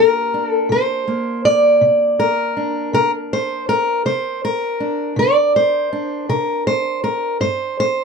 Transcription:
0, 0, Header, 1, 2, 480
1, 0, Start_track
1, 0, Tempo, 746269
1, 1887, Time_signature, 12, 3, 24, 8
1, 5171, End_track
2, 0, Start_track
2, 0, Title_t, "Steel-string acoustic guitar"
2, 0, Program_c, 0, 25
2, 0, Note_on_c, 0, 48, 70
2, 0, Note_on_c, 0, 58, 51
2, 0, Note_on_c, 0, 62, 50
2, 0, Note_on_c, 0, 70, 104
2, 161, Note_off_c, 0, 48, 0
2, 216, Note_off_c, 0, 62, 0
2, 218, Note_on_c, 0, 62, 45
2, 310, Note_off_c, 0, 70, 0
2, 310, Note_on_c, 0, 69, 104
2, 445, Note_on_c, 0, 48, 68
2, 455, Note_off_c, 0, 69, 0
2, 463, Note_on_c, 0, 72, 100
2, 689, Note_off_c, 0, 58, 0
2, 692, Note_on_c, 0, 58, 42
2, 878, Note_off_c, 0, 48, 0
2, 931, Note_off_c, 0, 72, 0
2, 934, Note_on_c, 0, 74, 99
2, 1166, Note_on_c, 0, 48, 74
2, 1410, Note_off_c, 0, 74, 0
2, 1412, Note_on_c, 0, 70, 94
2, 1598, Note_off_c, 0, 48, 0
2, 1649, Note_off_c, 0, 62, 0
2, 1651, Note_on_c, 0, 62, 46
2, 1886, Note_off_c, 0, 70, 0
2, 1886, Note_on_c, 0, 48, 75
2, 1894, Note_on_c, 0, 70, 107
2, 1997, Note_off_c, 0, 70, 0
2, 2142, Note_on_c, 0, 72, 110
2, 2318, Note_off_c, 0, 48, 0
2, 2370, Note_off_c, 0, 72, 0
2, 2373, Note_on_c, 0, 70, 100
2, 2608, Note_off_c, 0, 70, 0
2, 2608, Note_on_c, 0, 48, 65
2, 2610, Note_on_c, 0, 72, 97
2, 2849, Note_off_c, 0, 72, 0
2, 2860, Note_on_c, 0, 70, 97
2, 3039, Note_off_c, 0, 48, 0
2, 3087, Note_off_c, 0, 62, 0
2, 3089, Note_on_c, 0, 62, 46
2, 3320, Note_on_c, 0, 48, 75
2, 3334, Note_off_c, 0, 70, 0
2, 3339, Note_on_c, 0, 74, 103
2, 3573, Note_off_c, 0, 74, 0
2, 3577, Note_on_c, 0, 72, 100
2, 3756, Note_off_c, 0, 48, 0
2, 3809, Note_off_c, 0, 62, 0
2, 3811, Note_on_c, 0, 62, 47
2, 4046, Note_off_c, 0, 72, 0
2, 4047, Note_on_c, 0, 48, 78
2, 4049, Note_on_c, 0, 70, 90
2, 4288, Note_off_c, 0, 70, 0
2, 4290, Note_on_c, 0, 72, 100
2, 4481, Note_off_c, 0, 48, 0
2, 4524, Note_off_c, 0, 72, 0
2, 4526, Note_on_c, 0, 70, 84
2, 4763, Note_off_c, 0, 70, 0
2, 4763, Note_on_c, 0, 43, 71
2, 4765, Note_on_c, 0, 72, 99
2, 4783, Note_off_c, 0, 58, 0
2, 5007, Note_off_c, 0, 72, 0
2, 5017, Note_on_c, 0, 72, 108
2, 5171, Note_off_c, 0, 43, 0
2, 5171, Note_off_c, 0, 62, 0
2, 5171, Note_off_c, 0, 72, 0
2, 5171, End_track
0, 0, End_of_file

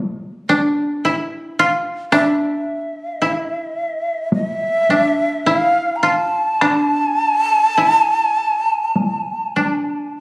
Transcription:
0, 0, Header, 1, 4, 480
1, 0, Start_track
1, 0, Tempo, 1094891
1, 934, Time_signature, 4, 2, 24, 8
1, 1899, Tempo, 1151631
1, 3339, Tempo, 1178782
1, 3819, Tempo, 1244813
1, 4296, End_track
2, 0, Start_track
2, 0, Title_t, "Shakuhachi"
2, 0, Program_c, 0, 77
2, 932, Note_on_c, 0, 76, 77
2, 1881, Note_off_c, 0, 76, 0
2, 1902, Note_on_c, 0, 76, 84
2, 2373, Note_on_c, 0, 77, 75
2, 2379, Note_off_c, 0, 76, 0
2, 2578, Note_on_c, 0, 82, 58
2, 2584, Note_off_c, 0, 77, 0
2, 2614, Note_on_c, 0, 81, 94
2, 2620, Note_off_c, 0, 82, 0
2, 4296, Note_off_c, 0, 81, 0
2, 4296, End_track
3, 0, Start_track
3, 0, Title_t, "Koto"
3, 0, Program_c, 1, 107
3, 0, Note_on_c, 1, 62, 67
3, 0, Note_on_c, 1, 64, 68
3, 48, Note_off_c, 1, 62, 0
3, 216, Note_on_c, 1, 62, 70
3, 458, Note_off_c, 1, 64, 0
3, 459, Note_on_c, 1, 64, 64
3, 698, Note_on_c, 1, 65, 75
3, 725, Note_off_c, 1, 64, 0
3, 928, Note_off_c, 1, 62, 0
3, 930, Note_on_c, 1, 62, 81
3, 1410, Note_on_c, 1, 64, 66
3, 1436, Note_off_c, 1, 65, 0
3, 1989, Note_off_c, 1, 62, 0
3, 2136, Note_on_c, 1, 62, 56
3, 2369, Note_off_c, 1, 64, 0
3, 2371, Note_on_c, 1, 64, 66
3, 2606, Note_on_c, 1, 65, 57
3, 2631, Note_off_c, 1, 64, 0
3, 2849, Note_off_c, 1, 62, 0
3, 2851, Note_on_c, 1, 62, 62
3, 3334, Note_on_c, 1, 64, 60
3, 3359, Note_off_c, 1, 65, 0
3, 3848, Note_off_c, 1, 62, 0
3, 4049, Note_on_c, 1, 62, 47
3, 4233, Note_off_c, 1, 64, 0
3, 4296, Note_off_c, 1, 62, 0
3, 4296, End_track
4, 0, Start_track
4, 0, Title_t, "Taiko and cinematic ensemble drums"
4, 219, Note_on_c, 9, 48, 29
4, 263, Note_off_c, 9, 48, 0
4, 931, Note_on_c, 9, 37, 52
4, 975, Note_off_c, 9, 37, 0
4, 1894, Note_on_c, 9, 48, 51
4, 1936, Note_off_c, 9, 48, 0
4, 2133, Note_on_c, 9, 48, 33
4, 2175, Note_off_c, 9, 48, 0
4, 2850, Note_on_c, 9, 37, 63
4, 2892, Note_off_c, 9, 37, 0
4, 3815, Note_on_c, 9, 48, 53
4, 3854, Note_off_c, 9, 48, 0
4, 4052, Note_on_c, 9, 48, 35
4, 4091, Note_off_c, 9, 48, 0
4, 4296, End_track
0, 0, End_of_file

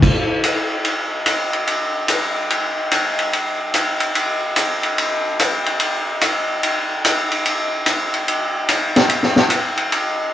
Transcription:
0, 0, Header, 1, 2, 480
1, 0, Start_track
1, 0, Tempo, 412088
1, 36, Time_signature, 4, 2, 24, 8
1, 12039, End_track
2, 0, Start_track
2, 0, Title_t, "Drums"
2, 29, Note_on_c, 9, 36, 69
2, 34, Note_on_c, 9, 49, 70
2, 145, Note_off_c, 9, 36, 0
2, 151, Note_off_c, 9, 49, 0
2, 507, Note_on_c, 9, 44, 65
2, 507, Note_on_c, 9, 51, 75
2, 624, Note_off_c, 9, 44, 0
2, 624, Note_off_c, 9, 51, 0
2, 986, Note_on_c, 9, 51, 60
2, 1102, Note_off_c, 9, 51, 0
2, 1466, Note_on_c, 9, 44, 56
2, 1466, Note_on_c, 9, 51, 72
2, 1582, Note_off_c, 9, 44, 0
2, 1582, Note_off_c, 9, 51, 0
2, 1783, Note_on_c, 9, 51, 43
2, 1900, Note_off_c, 9, 51, 0
2, 1950, Note_on_c, 9, 51, 58
2, 2067, Note_off_c, 9, 51, 0
2, 2424, Note_on_c, 9, 44, 64
2, 2424, Note_on_c, 9, 51, 69
2, 2541, Note_off_c, 9, 44, 0
2, 2541, Note_off_c, 9, 51, 0
2, 2917, Note_on_c, 9, 51, 59
2, 3033, Note_off_c, 9, 51, 0
2, 3395, Note_on_c, 9, 44, 51
2, 3395, Note_on_c, 9, 51, 71
2, 3511, Note_off_c, 9, 44, 0
2, 3511, Note_off_c, 9, 51, 0
2, 3712, Note_on_c, 9, 51, 44
2, 3828, Note_off_c, 9, 51, 0
2, 3882, Note_on_c, 9, 51, 54
2, 3998, Note_off_c, 9, 51, 0
2, 4353, Note_on_c, 9, 44, 62
2, 4353, Note_on_c, 9, 51, 68
2, 4469, Note_off_c, 9, 44, 0
2, 4469, Note_off_c, 9, 51, 0
2, 4662, Note_on_c, 9, 51, 49
2, 4778, Note_off_c, 9, 51, 0
2, 4836, Note_on_c, 9, 51, 65
2, 4952, Note_off_c, 9, 51, 0
2, 5311, Note_on_c, 9, 44, 60
2, 5311, Note_on_c, 9, 51, 73
2, 5428, Note_off_c, 9, 44, 0
2, 5428, Note_off_c, 9, 51, 0
2, 5627, Note_on_c, 9, 51, 43
2, 5744, Note_off_c, 9, 51, 0
2, 5801, Note_on_c, 9, 51, 63
2, 5918, Note_off_c, 9, 51, 0
2, 6283, Note_on_c, 9, 44, 59
2, 6283, Note_on_c, 9, 51, 79
2, 6400, Note_off_c, 9, 44, 0
2, 6400, Note_off_c, 9, 51, 0
2, 6596, Note_on_c, 9, 51, 45
2, 6713, Note_off_c, 9, 51, 0
2, 6752, Note_on_c, 9, 51, 62
2, 6868, Note_off_c, 9, 51, 0
2, 7238, Note_on_c, 9, 44, 56
2, 7238, Note_on_c, 9, 51, 68
2, 7354, Note_off_c, 9, 44, 0
2, 7354, Note_off_c, 9, 51, 0
2, 7723, Note_on_c, 9, 51, 64
2, 7840, Note_off_c, 9, 51, 0
2, 8207, Note_on_c, 9, 44, 61
2, 8207, Note_on_c, 9, 51, 76
2, 8324, Note_off_c, 9, 44, 0
2, 8324, Note_off_c, 9, 51, 0
2, 8521, Note_on_c, 9, 51, 48
2, 8638, Note_off_c, 9, 51, 0
2, 8685, Note_on_c, 9, 51, 59
2, 8801, Note_off_c, 9, 51, 0
2, 9155, Note_on_c, 9, 44, 63
2, 9155, Note_on_c, 9, 51, 69
2, 9272, Note_off_c, 9, 44, 0
2, 9272, Note_off_c, 9, 51, 0
2, 9478, Note_on_c, 9, 51, 41
2, 9594, Note_off_c, 9, 51, 0
2, 9645, Note_on_c, 9, 51, 62
2, 9761, Note_off_c, 9, 51, 0
2, 10116, Note_on_c, 9, 44, 60
2, 10116, Note_on_c, 9, 51, 77
2, 10233, Note_off_c, 9, 44, 0
2, 10233, Note_off_c, 9, 51, 0
2, 10438, Note_on_c, 9, 38, 42
2, 10438, Note_on_c, 9, 51, 49
2, 10555, Note_off_c, 9, 38, 0
2, 10555, Note_off_c, 9, 51, 0
2, 10594, Note_on_c, 9, 51, 64
2, 10711, Note_off_c, 9, 51, 0
2, 10748, Note_on_c, 9, 38, 29
2, 10865, Note_off_c, 9, 38, 0
2, 10904, Note_on_c, 9, 38, 43
2, 11020, Note_off_c, 9, 38, 0
2, 11064, Note_on_c, 9, 44, 62
2, 11064, Note_on_c, 9, 51, 67
2, 11181, Note_off_c, 9, 44, 0
2, 11181, Note_off_c, 9, 51, 0
2, 11385, Note_on_c, 9, 51, 46
2, 11502, Note_off_c, 9, 51, 0
2, 11556, Note_on_c, 9, 51, 63
2, 11672, Note_off_c, 9, 51, 0
2, 12039, End_track
0, 0, End_of_file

